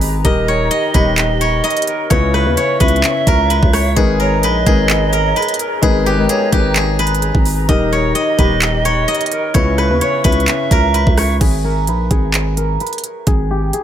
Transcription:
Already playing: 808-style bass G#1, felt piano G#3 D#4 A#4 B4, flute section G#4 D#5 A#5, guzheng G#4 B4
0.01 open hi-hat
0.24 808-style bass D#1, felt piano D#3 D#4 G4 A#4, flute section G4 D#5, guzheng D#5, kick, closed hi-hat
0.48 pan flute C#5, guzheng C#5
0.71 guzheng D#5, pan flute D#5, closed hi-hat
0.94 808-style bass D#1, felt piano D#3 D#4 G4, guzheng B4, kick, closed hi-hat
1.18 clap, closed hi-hat
1.41 guzheng C#5, closed hi-hat
1.64 guzheng D#5, closed hi-hat
1.70 closed hi-hat
1.77 closed hi-hat
1.82 closed hi-hat
1.87 pan flute A#4, closed hi-hat
2.10 808-style bass C#2, felt piano C#3 C#4 E4 B4, guzheng C#5, flute section C#5 E5 C#6, kick, closed hi-hat
2.34 pan flute B4, guzheng B4, cross-stick
2.46 808-style bass D#2, felt piano C#3 C#4 E4 B4
2.57 pan flute C#5, guzheng C#5, closed hi-hat
2.80 808-style bass C#2, felt piano C#3 C#4 E4 B4, guzheng B4, pan flute E5, kick, closed hi-hat
2.88 closed hi-hat
2.96 closed hi-hat
3.04 clap, closed hi-hat
3.27 808-style bass C#2, guzheng A#4, kick, closed hi-hat
3.50 guzheng B4, closed hi-hat
3.63 808-style bass C#2, kick
3.73 guzheng C#5, cross-stick, open hi-hat
3.96 808-style bass G#1, felt piano G#3 D#4 A#4 B4, guzheng G#4, flute section G#4 A#5, kick, closed hi-hat
4.20 guzheng A#4, pan flute C#5
4.43 808-style bass A#1, guzheng B4, pan flute D#5, closed hi-hat
4.66 808-style bass G#1, felt piano G#3 D#4 A#4 B4, guzheng G#4, kick, closed hi-hat
4.90 clap, closed hi-hat
5.13 guzheng A#4, closed hi-hat
5.36 guzheng B4, closed hi-hat
5.42 closed hi-hat
5.48 closed hi-hat
5.54 closed hi-hat
5.59 pan flute A#4, closed hi-hat
5.82 808-style bass G#1, felt piano G#3 D#4 A#4 B4, guzheng G#4, kick, closed hi-hat
6.06 guzheng G4, pan flute B4
6.18 felt piano G#3 D#4 A#4 B4
6.29 guzheng G#4, pan flute C#5, closed hi-hat
6.52 808-style bass G#1, felt piano G#3 D#4 B4, guzheng G4, pan flute B4, kick, closed hi-hat
6.76 guzheng G#4, clap, closed hi-hat
6.99 guzheng B4, closed hi-hat
7.07 closed hi-hat
7.15 closed hi-hat
7.22 closed hi-hat
7.35 808-style bass G#1, kick
7.45 open hi-hat
7.68 808-style bass D#1, felt piano D#3 D#4 G4 A#4, flute section G4 D#5, guzheng D#5, kick, closed hi-hat
7.92 pan flute C#5, guzheng C#5
8.15 guzheng D#5, pan flute D#5, closed hi-hat
8.38 808-style bass D#1, felt piano D#3 D#4 G4, guzheng B4, kick, closed hi-hat
8.62 clap, closed hi-hat
8.85 guzheng C#5, closed hi-hat
9.08 guzheng D#5, closed hi-hat
9.15 closed hi-hat
9.21 closed hi-hat
9.26 closed hi-hat
9.31 pan flute A#4, closed hi-hat
9.54 808-style bass C#2, felt piano C#3 C#4 E4 B4, flute section B4 E5 C#6, guzheng C#5, kick, closed hi-hat
9.78 pan flute B4, guzheng B4, cross-stick
9.90 808-style bass D#2, felt piano C#3 C#4 E4 B4
10.01 pan flute C#5, guzheng C#5, closed hi-hat
10.24 808-style bass C#2, felt piano C#3 C#4 E4 B4, guzheng B4, pan flute E5, kick, closed hi-hat
10.32 closed hi-hat
10.40 closed hi-hat
10.48 clap, closed hi-hat
10.71 808-style bass C#2, guzheng A#4, kick, closed hi-hat
10.94 guzheng B4, closed hi-hat
11.07 808-style bass C#2, kick
11.18 guzheng C#5, cross-stick, open hi-hat
11.41 808-style bass G#1, guzheng G#4, kick, closed hi-hat, crash
11.64 guzheng A#4
11.87 808-style bass A#1, guzheng B4, closed hi-hat
12.11 808-style bass G#1, guzheng G#4, kick, closed hi-hat
12.34 clap, closed hi-hat
12.57 guzheng A#4, closed hi-hat
12.80 guzheng B4, closed hi-hat
12.87 closed hi-hat
12.93 closed hi-hat
12.98 closed hi-hat
13.04 closed hi-hat
13.27 808-style bass G#1, guzheng G#4, kick, closed hi-hat
13.51 guzheng G4
13.73 guzheng G#4, closed hi-hat

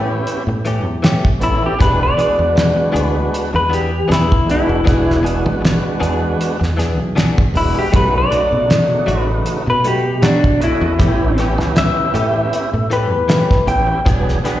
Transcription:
Already playing: fingered electric bass A2, tonewheel organ B3 C#4 E4 G4
0.27 closed hi-hat
0.47 fingered electric bass A2, muted clean electric guitar stroke
0.65 clean electric guitar E3 A3 C#4 G4, closed hi-hat
0.85 fingered electric bass E2, muted clean electric guitar stroke
1.03 clean electric guitar E3 A3 C#4 G4, snare, closed hi-hat
1.25 muted fingered electric bass stroke, kick
1.40 fingered electric bass A1, tonewheel organ B3 C#4 E4 A4, clean electric guitar E4, muted clean electric guitar stroke, closed hi-hat
1.62 clean electric guitar G4, muted clean electric guitar stroke
1.78 fingered electric bass E1, clean electric guitar E3 B3 D4 G#4 B4, tonewheel organ G#3 B3 D4 F#4, kick, closed hi-hat
2.03 clean electric guitar D5
2.17 clean electric guitar E3 B3 D4 G#4, tonewheel organ G#3 B3 D4 F#4, closed hi-hat
2.38 fingered electric bass E2, muted clean electric guitar stroke
2.55 muted clean electric guitar stroke, snare, closed hi-hat
2.76 muted clean electric guitar stroke
2.92 fingered electric bass D2, clean electric guitar E3 B3 D4 G#4, closed hi-hat
3.06 clean electric guitar B4
3.14 muted clean electric guitar stroke
3.34 closed hi-hat
3.53 fingered electric bass E2, clean electric guitar B4, muted clean electric guitar stroke
3.69 clean electric guitar E3 B3 D4 G#4, closed hi-hat
3.74 clean electric guitar G4
3.91 muted clean electric guitar stroke
4.08 fingered electric bass E2, clean electric guitar E3 B3 D4 G#4, closed hi-hat
4.12 clean electric guitar E4, snare
4.32 kick
4.46 tonewheel organ G#3 B3 D4 F#4, muted clean electric guitar stroke, closed hi-hat
4.51 clean electric guitar E4
4.67 fingered electric bass E1, muted clean electric guitar stroke
4.84 fingered electric bass E1, clean electric guitar E3 B3 D4 G#4, tonewheel organ G#3 B3 D4 F#4, kick, closed hi-hat
5.10 snare
5.22 clean electric guitar E3 B3 D4 G#4, tonewheel organ G#3 B3 D4 F#4, closed hi-hat
5.44 fingered electric bass G#1, muted clean electric guitar stroke
5.61 muted clean electric guitar stroke, closed hi-hat
5.65 snare
5.83 muted clean electric guitar stroke
6.00 fingered electric bass E2, clean electric guitar E3 B3 D4 G#4, closed hi-hat
6.22 muted clean electric guitar stroke
6.41 closed hi-hat
6.60 fingered electric bass E2, muted clean electric guitar stroke, snare
6.77 clean electric guitar E3 B3 D4 G#4, snare, closed hi-hat
6.99 fingered electric bass B1, muted clean electric guitar stroke
7.16 clean electric guitar E3 B3 D4 G#4, snare, closed hi-hat
7.38 kick
7.54 fingered electric bass E1, tonewheel organ G#3 B3 D4 F#4, clean electric guitar E4, muted clean electric guitar stroke, open hi-hat
7.75 clean electric guitar G4, muted clean electric guitar stroke
7.92 fingered electric bass B1, clean electric guitar F#3 A3 D#4 F#4 B4, tonewheel organ A3 C#4 D#4 F#4, kick, closed hi-hat
8.18 clean electric guitar D5
8.30 tonewheel organ C#3 A3 D#4 F#4, clean electric guitar F#3 A3 D#4 F#4, closed hi-hat
8.51 fingered electric bass B2, muted clean electric guitar stroke
8.69 muted clean electric guitar stroke, snare, closed hi-hat
8.90 muted clean electric guitar stroke
9.06 fingered electric bass A1, clean electric guitar F#3 A3 D#4 F#4, closed hi-hat
9.21 clean electric guitar B4
9.27 muted clean electric guitar stroke
9.46 closed hi-hat
9.66 fingered electric bass B2, clean electric guitar B4, muted clean electric guitar stroke
9.84 clean electric guitar F#3 A3 D#4 F#4 G4, closed hi-hat
10.05 muted clean electric guitar stroke
10.22 fingered electric bass B2, clean electric guitar F#3 A3 D4 D#4 F#4, snare, closed hi-hat
10.44 kick
10.60 tonewheel organ A3 C#4 F#4 D#5, clean electric guitar E4, muted clean electric guitar stroke, closed hi-hat
10.81 fingered electric bass E2, muted clean electric guitar stroke
10.98 fingered electric bass A1, clean electric guitar E3 A3 C#4 G4, tonewheel organ B3 C#4 E4 G4, kick, closed hi-hat
11.37 clean electric guitar E3 A3 C#4 G4, tonewheel organ B3 C#4 E4 G4, snare, closed hi-hat
11.58 fingered electric bass C#2, muted clean electric guitar stroke, snare
11.75 clean electric guitar E5, muted clean electric guitar stroke, snare, closed hi-hat
11.96 muted clean electric guitar stroke
12.14 fingered electric bass A2, clean electric guitar E3 A3 C#4 G4, closed hi-hat
12.36 muted clean electric guitar stroke
12.53 closed hi-hat
12.73 fingered electric bass A2, muted clean electric guitar stroke
12.90 clean electric guitar E3 A3 C#4 G4 B4, closed hi-hat
13.11 fingered electric bass E2, muted clean electric guitar stroke
13.28 clean electric guitar E3 A3 C#4 G4, snare, closed hi-hat
13.51 muted fingered electric bass stroke, kick, snare
13.67 fingered electric bass A1, tonewheel organ B3 C#4 E4 G4, clean electric guitar G5, muted clean electric guitar stroke, closed hi-hat
13.87 muted clean electric guitar stroke
14.05 fingered electric bass E1, clean electric guitar E3 B3 D4 G#4, tonewheel organ F#3 B3 D4 G#4, kick, closed hi-hat
14.28 snare
14.43 clean electric guitar E3 B3 D4 G#4, tonewheel organ F#3 B3 D4 B4, snare, closed hi-hat

